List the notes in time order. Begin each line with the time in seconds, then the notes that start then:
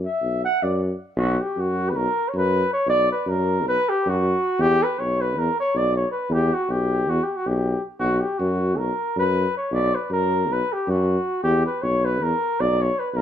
0.05 E5
0.22 B1
0.45 F#5
0.63 F#2 D5
1.16 B1 F#4
1.41 G4
1.57 F#2 F#4
1.90 B4
1.96 B1 A#4
2.29 C#5
2.34 F#2 B4
2.73 C#5
2.87 B1 D5
3.12 B4
3.26 F#2 A#4
3.64 B1 B4
3.89 G4
4.06 F#2 F#4
4.58 E2 G4
4.83 B4
4.99 B1 C#5
5.21 B4
5.37 E2 A#4
5.60 C#5
5.74 B1 D5
5.96 C#5
6.12 B4
6.29 E2 G4
6.54 F#4
6.68 B1 G4
7.08 E2 F#4
7.23 G4
7.36 F#4
7.46 B1 G4
7.99 B1 F#4
8.21 G4
8.38 F#2 F#4
8.78 B1 A#4
9.16 F#2 B4
9.57 C#5
9.71 B1 D5
9.95 B4
10.10 F#2 A#4
10.49 B1 B4
10.73 G4
10.87 F#2 F#4
11.43 E2 G4
11.66 B4
11.82 B1 C#5
12.05 B4
12.21 E2 A#4
12.60 B1 D5
12.81 C#5
12.99 B4
13.11 B1 B4
13.17 A#4